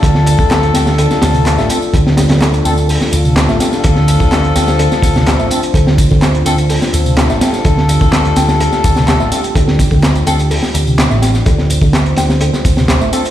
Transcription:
<<
  \new Staff \with { instrumentName = "Analog synth pad" } { \time 4/4 \key d \minor \tempo 4 = 126 << { a'1~ | a'1 | c''1~ | c''1 |
g'1~ | g'1 | c''1 | } \\ { <a d' f'>1~ | <a d' f'>1~ | <a d' f'>1~ | <a d' f'>1~ |
<a d' f'>1~ | <a d' f'>1~ | <a d' f'>1 | } >> }
  \new Staff \with { instrumentName = "Horn section" } { \time 4/4 \key d \minor <d' f' a'>2.~ <d' f' a'>8 <d' f' a'>8 | r4. <d' f' a'>8 r8 <d' f' a'>4.~ | <d' f' a'>2.~ <d' f' a'>8 <d' f' a'>8 | r4. <d' f' a'>8 r8 <d' f' a'>4.~ |
<d' f' a'>2.~ <d' f' a'>8 <d' f' a'>8 | r4. <d' f' a'>8 r2 | r2. r8 <d' f' a'>8 | }
  \new Staff \with { instrumentName = "Tonewheel organ" } { \clef bass \time 4/4 \key d \minor d8. d16 r8 c'16 r16 d16 r8 c16 r16 a16 c'16 r16 | d8. d16 r8 c'16 r16 d16 r8 c16 r16 a16 c'16 r16 | d8. d16 r8 c'16 r16 d16 r8 c16 r16 a16 c'16 r16 | d8. d16 r8 c'16 r16 d16 r8 c16 r16 a16 c'16 r16 |
d8. d16 r8 c'16 r16 d16 r8 c16 r16 a16 c'16 r16 | d8. d16 r8 c'16 r16 d16 r8 c16 r16 a16 c'16 r16 | d8. d16 r8 c'16 r16 d16 r8 c16 r16 a16 c'16 r16 | }
  \new Staff \with { instrumentName = "Picked electric bass" } { \clef bass \time 4/4 \key d \minor d,8. d,8. d,8. r16 d,8. a,,16 r8 | d,8. d,8. d,8. r16 d,8. a,,16 r8 | d,8. d,8. d,8. r16 d,8. a,,16 r8 | d,8. d,8. d,8. r16 d,8. a,,16 r8 |
d,8. d,8. d,8. r16 d,8. a,,16 r8 | d,8. d,8. d,8. r16 d,8. a,,8. | d,8. d,8. d,8. r16 d,8. a,,16 r8 | }
  \new DrumStaff \with { instrumentName = "Drums" } \drummode { \time 4/4 <hh bd tamb>16 sn16 <hh cymr tamb>16 <bd tamb>16 <hc hh sn tamb>16 hh16 <hh cymr sn tamb>16 <sn tamb>16 <hh tamb>16 <sn tamb>16 <hh cymr sn tamb>16 <hh tamb>16 <hc hh sn tamb>16 <sn tamb>16 <hh cymr tamb>16 tamb16 | <hh bd tamb>16 sn16 <hh cymr sn tamb>16 <hh sn tamb>16 <hc hh sn tamb>16 <hh tamb>16 <cymr tamb>16 tamb16 <hho tamb>16 <sn tamb>16 <hh cymr tamb>16 tamb16 <hc hh sn tamb>16 <sn tamb>16 <hh cymr sn tamb>16 <sn tamb>16 | <hh bd tamb>16 sn16 <hh cymr tamb>16 <bd tamb>16 <hc hh sn tamb>16 hh16 <hh cymr sn tamb>16 <sn tamb>16 <hh tamb>16 <sn tamb>16 <hh bd cymr tamb>16 <sn tamb>16 <hc hh sn tamb>16 tamb16 <hh cymr tamb>16 <hh tamb>16 | <hh bd tamb>16 sn16 <hh bd cymr tamb>16 <bd tamb>16 <hc hh sn tamb>16 hh16 <hh cymr tamb>16 <hh tamb>16 <hho tamb>16 <sn tamb>16 <hh cymr tamb>16 tamb16 <hc hh sn tamb>16 <sn tamb>16 <hh cymr sn tamb>16 <sn tamb>16 |
<hh bd tamb>16 sn16 <hh cymr tamb>16 <bd tamb>16 <hc hh sn tamb>16 hh16 <hh cymr sn tamb>16 <sn tamb>16 <hh tamb>16 <sn tamb>16 <hh bd cymr tamb>16 <sn tamb>16 <hc hh sn tamb>16 tamb16 <hh cymr tamb>16 <hh tamb>16 | <hh bd tamb>16 sn16 <hh bd cymr tamb>16 <bd tamb>16 <hc hh sn tamb>16 <hh tamb>16 <hh cymr tamb>16 <hh tamb>16 <hho tamb>16 <sn tamb>16 <hh cymr tamb>16 tamb16 <hc hh sn tamb>16 <sn tamb>16 <hh cymr sn tamb>16 <sn tamb>16 | <hh bd tamb>16 sn16 <hh cymr tamb>16 <bd tamb>16 <hc hh sn tamb>16 hh16 <hh cymr sn tamb>16 <sn tamb>16 <hh tamb>16 <sn tamb>16 <hh bd cymr tamb>16 <sn tamb>16 <hc hh sn tamb>16 tamb16 <hh cymr tamb>16 <hh tamb>16 | }
>>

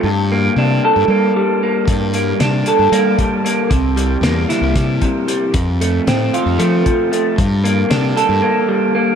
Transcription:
<<
  \new Staff \with { instrumentName = "Clean electric guitar" } { \time 7/8 \key g \dorian \tempo 4 = 114 g,8 bes8 d'8 a'8 bes8 g8 bes8 | g,8 bes8 d'8 a'8 bes8 g8 bes8 | c8 g8 bes8 e'8 g8 c8 g8 | f,8 a8 c'8 f'8 a8 f8 a8 |
g,8 bes8 d'8 a'8 bes8 g8 bes8 | }
  \new Staff \with { instrumentName = "Fingered electric bass" } { \clef bass \time 7/8 \key g \dorian g,4 c8 r16 g,16 g8 r4 | g,4 c8 r16 g,16 g8 r4 | c,4 e,8 r16 c,16 c8 r4 | f,4 a,8 r16 f,16 f8 r4 |
g,4 c8 r16 g,16 r4. | }
  \new DrumStaff \with { instrumentName = "Drums" } \drummode { \time 7/8 r4 r4 r4. | <hh bd>8 hh8 <hh sn>8 hh8 hh8 <hh bd>8 hh8 | <hh bd>8 hh8 <hh sn>8 <hh sn>8 <hh bd sn>8 <hh bd>8 hh8 | <hh bd>8 hh8 <hh sn>8 hh8 hh8 <hh bd>8 hh8 |
<hh bd>8 hh8 <hh sn>8 hh8 r4. | }
>>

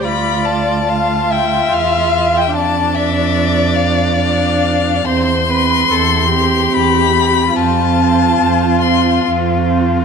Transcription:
<<
  \new Staff \with { instrumentName = "Violin" } { \time 3/4 \key d \dorian \tempo 4 = 72 b''8 a''4 g''8 f''8. g''16 | a''8 e''4 f''8 f''4 | c'''2 b''4 | a''4. c'''8 r4 | }
  \new Staff \with { instrumentName = "Violin" } { \time 3/4 \key d \dorian d''4 f''8 e''4. | d''2. | c''8 b'8 a'8 g'4. | f'2. | }
  \new Staff \with { instrumentName = "Viola" } { \time 3/4 \key d \dorian f'4 f'2 | d'2 d'4 | c'8 c'8 c'8 c'8 c'8 c'8 | c'8 c'8 c'8 c'8 c'8 c'8 | }
  \new Staff \with { instrumentName = "Cello" } { \clef bass \time 3/4 \key d \dorian d,2 e,4 | f,2. | e,4 e,4 e,4 | f,4 f,4 f,4 | }
>>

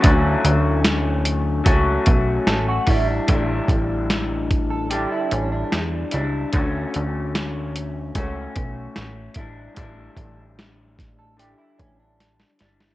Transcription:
<<
  \new Staff \with { instrumentName = "Clean electric guitar" } { \time 4/4 \key d \major \tempo 4 = 74 r2. a'16 fis'16 e'16 d'16~ | d'4~ d'16 r8 a'16 g'16 e'16 cis'16 d'4~ d'16 | r1 | r4. r16 a'16 g'16 e'16 cis'16 d'4~ d'16 | }
  \new Staff \with { instrumentName = "Clean electric guitar" } { \time 4/4 \key d \major <d fis a cis' fis'>2 <fis a cis' fis'>4. <g d' e'>8 | <a, d g d' e'>2 <d g d' e'>4. <g d' e'>8 | <d a cis' fis'>2 <a cis' fis'>4. <g d' e'>8 | <a, d g d' e'>2 <d g d' e'>4. <g d' e'>8 | }
  \new Staff \with { instrumentName = "Analog synth bass" } { \clef bass \time 4/4 \key d \major d,8 d,4. cis,8 b,,8 a,,8 a,,8 | a,,8 a,,4.~ a,,16 r16 a,,8 e,8 cis,8 | d,8 d,4. cis,8 b,,8 a,,8 a,,8 | a,,8 a,,4.~ a,,16 r16 a,,4 g,,8 | }
  \new DrumStaff \with { instrumentName = "Drums" } \drummode { \time 4/4 <hh bd>8 hh8 <hh sn>8 hh8 <hh bd>8 <hh bd>8 <hh sn>8 <hho bd>8 | <hh bd>8 <hh bd>8 <hh sn>8 <hh bd>8 hh8 hh8 <hh sn>8 hh8 | <hh bd>8 hh8 <hh sn>8 hh8 <hh bd>8 <hh bd>8 <hh sn>8 <hh bd>8 | <hh bd>8 <hh bd>8 <hh sn>8 <hh bd sn>8 hh8 <hh bd>8 <hh sn>16 sn16 <hh sn>16 sn16 | }
>>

